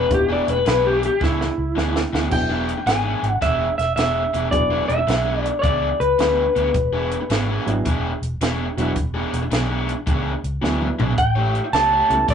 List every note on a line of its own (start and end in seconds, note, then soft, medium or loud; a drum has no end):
0.00 0.12 B4 medium
0.10 0.38 E1 medium
0.10 0.43 G#3 medium
0.10 0.44 B3 medium
0.10 0.44 D4 medium
0.10 0.44 E4 medium
0.10 0.44 F#4 medium
0.10 kick loud
0.10 closed hi-hat medium
0.14 0.30 G4 medium
0.29 0.51 E3 medium
0.29 0.50 B3 medium
0.29 0.50 D4 medium
0.29 0.50 G#4 medium
0.29 0.50 D5 medium
0.48 0.61 E1 medium
0.48 0.66 B4 loud
0.48 closed hi-hat medium
0.57 muted overdriven electric guitar stroke medium
0.66 1.07 B1 loud
0.66 0.84 E3 medium
0.66 0.84 B3 medium
0.66 0.84 D4 medium
0.66 0.83 G#4 loud
0.66 0.85 B4 loud
0.66 snare loud
0.66 closed hi-hat medium
0.84 1.06 E3 medium
0.84 1.06 B3 medium
0.84 1.06 D4 medium
0.84 1.03 G4 medium
0.84 1.05 G#4 medium
1.03 1.22 G4 medium
1.03 closed hi-hat medium
1.21 1.48 C#2 loud
1.21 1.45 E3 loud
1.21 1.45 B3 loud
1.21 1.45 D4 loud
1.21 2.29 E4 medium
1.21 1.45 G#4 loud
1.21 kick loud
1.21 snare medium
1.41 snare medium
1.58 1.71 C#2 medium
1.76 2.04 D2 medium
1.76 2.00 E3 medium
1.76 2.00 B3 medium
1.76 2.00 D4 medium
1.76 2.00 G#4 loud
1.76 snare medium
1.96 snare medium
2.13 2.27 D2 medium
2.13 2.25 E3 medium
2.13 2.25 B3 medium
2.13 2.25 D4 loud
2.13 2.25 G#4 medium
2.13 snare medium
2.30 2.73 E1 medium
2.30 2.64 F#3 medium
2.30 2.64 B3 medium
2.30 2.64 D4 medium
2.30 2.64 E4 medium
2.30 2.65 G#4 medium
2.30 2.86 G5 medium
2.30 kick loud
2.30 crash medium
2.49 2.71 E3 medium
2.49 2.71 B3 medium
2.49 2.71 D4 medium
2.49 2.71 G#4 medium
2.69 closed hi-hat medium
2.78 muted overdriven electric guitar stroke soft
2.86 3.14 G#1 medium
2.86 3.05 E3 medium
2.86 3.04 B3 medium
2.86 3.04 D4 medium
2.86 3.04 G#4 medium
2.86 3.42 G#5 loud
2.86 snare loud
2.86 closed hi-hat medium
3.05 3.26 E3 medium
3.05 3.26 B3 medium
3.05 3.26 D4 medium
3.05 3.26 G#4 medium
3.23 3.37 G#1 medium
3.23 closed hi-hat medium
3.41 3.69 E1 medium
3.41 3.65 E3 medium
3.41 3.66 B3 medium
3.41 3.66 D4 medium
3.41 3.66 G#4 medium
3.41 3.77 E5 medium
3.41 kick loud
3.41 snare soft
3.41 closed hi-hat medium
3.78 3.92 E1 medium
3.78 3.95 E5 medium
3.78 snare soft
3.78 closed hi-hat medium
3.96 4.25 E1 medium
3.96 4.21 E3 medium
3.96 4.21 B3 medium
3.96 4.21 D4 medium
3.96 4.22 G#4 medium
3.96 4.51 E5 medium
3.96 snare loud
3.96 closed hi-hat medium
4.33 4.48 E1 medium
4.33 4.46 E3 medium
4.33 4.46 B3 medium
4.33 4.46 D4 medium
4.33 4.46 G#4 medium
4.33 closed hi-hat medium
4.51 4.80 E1 medium
4.51 4.85 F#3 medium
4.51 4.85 B3 medium
4.51 4.85 D4 medium
4.51 4.86 E4 medium
4.51 4.86 G#4 medium
4.51 4.86 D5 medium
4.51 kick loud
4.51 closed hi-hat medium
4.71 4.93 E3 medium
4.71 4.92 B3 medium
4.71 4.92 D4 medium
4.71 4.92 G#4 medium
4.88 5.03 E1 medium
4.88 5.40 E5 medium
4.88 closed hi-hat soft
4.98 muted overdriven electric guitar stroke medium
5.07 5.49 B1 medium
5.07 5.26 E3 medium
5.07 5.25 B3 medium
5.07 5.25 D4 medium
5.07 5.24 G#4 medium
5.07 snare loud
5.07 closed hi-hat medium
5.25 5.48 E3 medium
5.25 5.47 B3 medium
5.25 5.47 D4 medium
5.25 5.47 G#4 medium
5.40 5.60 D5 medium
5.45 closed hi-hat medium
5.59 5.87 E3 medium
5.59 5.63 C#5 medium
5.59 6.00 D5 medium
5.63 5.91 C#2 loud
5.63 5.87 B3 medium
5.63 5.87 D4 medium
5.63 5.88 G#4 medium
5.63 kick loud
5.63 closed hi-hat medium
6.00 6.14 C#2 medium
6.00 7.62 B4 medium
6.00 closed hi-hat soft
6.19 6.46 D2 medium
6.19 6.43 E3 medium
6.19 6.43 B3 medium
6.19 6.43 D4 medium
6.19 6.43 G#4 medium
6.19 snare loud
6.19 closed hi-hat medium
6.55 6.70 D2 medium
6.55 6.67 E3 medium
6.55 6.68 B3 medium
6.55 6.68 D4 medium
6.55 6.68 G#4 medium
6.55 closed hi-hat soft
6.74 7.16 E1 loud
6.74 kick loud
6.74 closed hi-hat medium
6.93 7.14 E3 medium
6.93 7.14 B3 medium
6.93 7.14 D4 medium
6.93 7.14 G#4 medium
7.11 closed hi-hat medium
7.21 muted overdriven electric guitar stroke medium
7.30 7.57 G#1 medium
7.30 7.48 E3 medium
7.30 7.48 B3 medium
7.30 7.48 D4 medium
7.30 7.48 G#4 medium
7.30 snare loud
7.30 closed hi-hat medium
7.49 7.70 E3 medium
7.49 7.70 B3 medium
7.49 7.70 D4 medium
7.49 7.70 G#4 medium
7.66 7.80 G#1 medium
7.66 7.83 F#3 medium
7.66 7.83 B3 medium
7.66 7.83 D4 medium
7.66 7.83 E4 medium
7.66 7.84 G#4 medium
7.66 closed hi-hat medium
7.85 8.13 E1 medium
7.85 8.09 E3 medium
7.85 8.10 B3 medium
7.85 8.10 D4 loud
7.85 8.10 G#4 loud
7.85 kick loud
7.85 closed hi-hat medium
8.22 8.36 E1 medium
8.22 closed hi-hat medium
8.41 8.68 E1 medium
8.41 8.65 E3 medium
8.41 8.65 B3 medium
8.41 8.65 D4 medium
8.41 8.65 G#4 medium
8.41 snare loud
8.41 closed hi-hat medium
8.77 8.91 E1 medium
8.77 8.90 E3 medium
8.77 8.94 F#3 medium
8.77 8.94 B3 medium
8.77 8.90 B3 medium
8.77 8.94 D4 medium
8.77 8.90 D4 medium
8.77 8.94 E4 medium
8.77 8.95 F#4 medium
8.77 8.90 G#4 medium
8.77 closed hi-hat medium
8.96 9.23 E1 medium
8.96 kick medium
8.96 closed hi-hat medium
9.14 9.36 E3 medium
9.14 9.36 B3 medium
9.14 9.36 D4 medium
9.14 9.36 G#4 medium
9.33 9.47 E1 medium
9.33 closed hi-hat medium
9.42 muted overdriven electric guitar stroke medium
9.51 9.93 B1 medium
9.51 9.70 E3 medium
9.51 9.69 B3 medium
9.51 9.69 D4 medium
9.51 9.68 G#4 medium
9.51 snare loud
9.51 closed hi-hat medium
9.70 9.92 E3 medium
9.70 9.91 B3 medium
9.70 9.91 D4 medium
9.70 9.91 G#4 medium
9.89 closed hi-hat medium
10.06 10.35 C#2 medium
10.06 10.31 E3 medium
10.06 10.31 B3 medium
10.06 10.31 D4 medium
10.06 10.31 G#4 loud
10.06 kick loud
10.06 closed hi-hat medium
10.44 10.58 C#2 medium
10.44 closed hi-hat medium
10.61 10.90 D2 medium
10.61 10.86 E3 medium
10.61 10.95 F#3 medium
10.61 10.95 B3 soft
10.61 10.86 B3 medium
10.61 10.95 D4 soft
10.61 10.87 D4 medium
10.61 10.96 E4 medium
10.61 10.96 G#4 medium
10.61 10.87 G#4 medium
10.61 snare medium
10.81 mid tom medium
10.99 11.13 B1 medium
10.99 11.11 E3 medium
10.99 11.11 B3 medium
10.99 11.11 D4 medium
10.99 11.12 G#4 medium
10.99 floor tom medium
11.18 11.59 A1 medium
11.18 11.73 G5 medium
11.18 kick loud
11.18 closed hi-hat medium
11.36 11.58 A3 medium
11.36 11.58 E4 medium
11.36 11.58 G4 medium
11.36 11.57 C#5 medium
11.55 closed hi-hat medium
11.65 muted overdriven electric guitar stroke medium
11.73 12.01 C#2 medium
11.73 11.92 A3 medium
11.73 11.91 E4 medium
11.73 11.91 G4 medium
11.73 11.91 C#5 medium
11.73 12.30 A5 loud
11.73 snare loud
11.73 closed hi-hat medium
11.92 12.14 A3 medium
11.92 12.13 E4 medium
11.92 12.13 G4 medium
11.92 12.13 C#5 medium
12.09 12.24 C#2 medium
12.09 12.34 G3 medium
12.09 12.34 B3 medium
12.09 12.34 C#4 medium
12.09 12.34 E4 medium
12.09 12.34 A4 medium
12.09 closed hi-hat medium
12.28 12.34 A1 medium
12.28 12.34 A3 medium
12.28 12.34 E4 medium
12.28 12.34 G4 medium
12.28 12.34 C#5 loud
12.28 12.34 E5 medium
12.28 kick loud
12.28 closed hi-hat medium